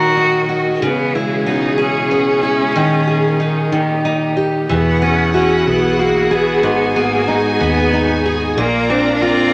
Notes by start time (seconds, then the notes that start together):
Already playing: A#2 D#3 F#3 D#4 F#4 A#4 D#5
0.17 D#4
0.49 F#4
0.81 B2 C#3 E3 G#3 B3 C#4 G#4
1.15 G#3 E4
1.46 B3 D#4
1.78 C#4 G#4
2.11 B3
2.43 E4
2.75 A#2 D#3 D#4
3.07 G#4
3.40 D#4
3.72 A#2 D#3 G3 G4
4.05 D#4
4.37 G4
4.69 E1 E3 B3 E4 F#4 G#4 F#5
5.02 B3 C#4
5.34 C#4 F#4
5.61 C#4
5.67 B1 B3
5.99 A#3 F#4
6.31 B3 G#4
6.63 G#1 G#2 D#4 G#5
6.96 A#3 B3
7.28 G#3 D#4
7.60 D#2 B3
7.93 D#4
8.26 G#4
8.57 A#1 A#2 A#3 F4 A#4 D5 A#5
8.89 C4 D4
9.14 D4
9.21 C4 F4